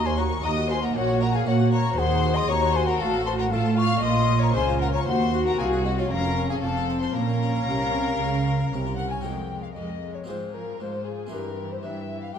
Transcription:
Already playing: harpsichord D#2, cello section D#2, double bass section D#2
0.05 harpsichord A#3, violin section C5 C6, flute G#5
0.17 harpsichord F#4, viola section F#4, violin section C#5 C#6, flute A#5
0.30 harpsichord A#4
0.42 harpsichord D#2 A#3, cello section D#2, double bass section D#2, viola section F#4, violin section D#5 D#6, flute A#5
0.56 harpsichord F#4
0.68 viola section F#4, harpsichord A#4, violin section C5 C6, flute G#5
0.82 harpsichord A#3, violin section A#4 A#5, flute F#5
0.95 double bass section A#1, cello section A#2, harpsichord A#2, violin section F#4 F#5, viola section F#4, flute C#5
1.08 harpsichord C#4
1.20 harpsichord F#4, violin section A#4 A#5, flute F#5
1.34 violin section G#4 G#5, harpsichord A#4, flute F5
1.46 double bass section A#2, harpsichord A#3 C#4, cello section A#3, violin section F#4 F#5, viola section F#4, flute C#5
1.60 harpsichord F#4
1.72 harpsichord A#4, violin section C#5 C#6, flute A#5
1.85 harpsichord C#4
1.97 double bass section D#2, cello section D#3, harpsichord D#3, viola section G#4, violin section C5 C6, flute F#5
2.11 harpsichord C4
2.23 harpsichord F#4
2.36 harpsichord C5, violin section D#5 D#6, flute C6
2.49 double bass section D#2, harpsichord D#2 C4, cello section D#2, viola section F#4, violin section C#5 C#6, flute A#5
2.62 harpsichord F#4
2.75 violin section C5 C6, harpsichord C5, flute G#5
2.87 harpsichord C4, violin section A#4 A#5, flute F#5
3.00 double bass section A1, cello section A2, harpsichord A2, violin section A4 A5, flute F5
3.13 harpsichord C4
3.25 harpsichord F4, violin section C5 C6, flute A5
3.39 violin section A#4 A#5, harpsichord C5, flute F#5
3.51 double bass section A2, cello section A3, harpsichord A3 C4, viola section F4, violin section A4 A5, flute F5
3.66 harpsichord F4
3.77 harpsichord C5, violin section F5 F6, flute C#6
3.91 harpsichord C4
4.03 double bass section A#1, cello section A#2, harpsichord A#2, viola section F4, violin section D#5 D#6, flute C6
4.17 harpsichord C#4
4.30 harpsichord F4
4.41 harpsichord A#4, violin section C#5 C#6, flute A#5
4.54 double bass section C#2, cello section C#3, harpsichord C#3 C#4, viola section F4, violin section C5 C6, flute G#5
4.69 harpsichord F4
4.81 violin section A#4 A#5, harpsichord A#4, flute F#5
4.94 harpsichord C#4, violin section C#5 C#6, flute A#5
5.07 double bass section D#2, cello section D#2, harpsichord D#2, viola section F#4, violin section C5 C6, flute F#5
5.21 harpsichord C4
5.34 harpsichord F#4
5.46 harpsichord C4, violin section A#4 A#5, flute F#5
5.58 double bass section C2, cello section C2, harpsichord C2 D#4, violin section G#4 G#5, flute F5
5.73 harpsichord F#4
5.85 harpsichord C4, violin section F#4 F#5, flute D#5
5.98 harpsichord D#4, violin section F4 F5, flute C#5
6.10 double bass section F1, cello section F2, harpsichord F2, viola section C#4, violin section A#4 A#5, flute F5
6.24 harpsichord F4
6.38 harpsichord A#4
6.49 violin section G#4 G#5, harpsichord C#5, flute F5
6.61 double bass section F1, cello section F2, harpsichord F2, viola section C4, violin section A4 A5, flute F5
6.77 harpsichord F4
6.90 harpsichord C5
7.01 harpsichord F4, violin section C5 C6, flute A5
7.13 double bass section A#1, cello section A#2, harpsichord A#2, viola section C#4, violin section A#4 A#5, flute F5
7.29 harpsichord C#4
7.43 harpsichord F4
7.55 harpsichord A#4
7.67 double bass section C2, cello section C3, harpsichord C3 C#4
7.82 harpsichord F4
7.95 harpsichord A#4
8.08 harpsichord C#4
8.19 double bass section C#2, cello section C#3, harpsichord C#3
8.34 harpsichord C#4
8.47 harpsichord F4
8.60 harpsichord A#4
8.71 double bass section C2, cello section C3, harpsichord C3 C#4
8.87 harpsichord F4
8.97 harpsichord A#4, violin section F#5, flute F#5
9.11 harpsichord C#4, violin section G#5, flute G#5
9.21 cello section F2, viola section G#3, harpsichord C4 F4 G#4, violin section A#4 G5, flute G5
9.26 harpsichord F2
9.50 viola section G#3
9.62 flute F5, violin section F5
9.75 cello section F2, harpsichord F2, viola section G#3, flute D#5, violin section D#5
10.02 viola section G#3
10.15 violin section C#5, flute C#5
10.24 cello section G#2, viola section F3, harpsichord C4 F4 G#4, violin section C5
10.28 harpsichord G#2, violin section G#4, flute C5
10.53 viola section F3, violin section A#4, flute A#4
10.79 cello section G#2, harpsichord G#2, viola section F3, violin section F4 C5, flute C5
11.06 viola section F3, violin section G#4, flute G#4
11.27 harpsichord C4 E4 C5
11.31 cello section G2, harpsichord G2, viola section E3, violin section G4 A#4, flute A#4
11.57 viola section E3
11.71 violin section C5, flute C5
11.83 harpsichord G2, cello section G2, viola section E3, flute E5, violin section E5
12.09 viola section E3
12.21 flute F5, violin section F5
12.34 harpsichord G2, cello section G2, viola section E3, flute G5, violin section G5

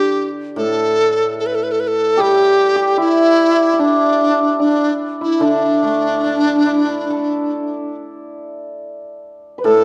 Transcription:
Already playing: hammered dulcimer D3, dizi G4
0.56 hammered dulcimer A2, dizi A4
1.39 dizi A4
1.46 dizi B4
1.55 dizi A4
1.63 dizi B4
1.72 dizi A4
1.80 dizi B4
1.88 dizi A4
2.17 hammered dulcimer G3 G4, dizi G4
2.76 hammered dulcimer G4
2.97 hammered dulcimer E4, dizi E4
3.73 hammered dulcimer E4
3.79 hammered dulcimer D4, dizi D4
4.60 hammered dulcimer D4, dizi D4
5.21 hammered dulcimer E4, dizi E4
5.40 hammered dulcimer D3 D4
5.44 dizi D4
5.83 hammered dulcimer A3
6.24 hammered dulcimer D4
6.66 hammered dulcimer E4
7.10 hammered dulcimer A4
9.58 hammered dulcimer B4, xiao B4
9.64 hammered dulcimer A2 A4, xiao A4, dizi A4

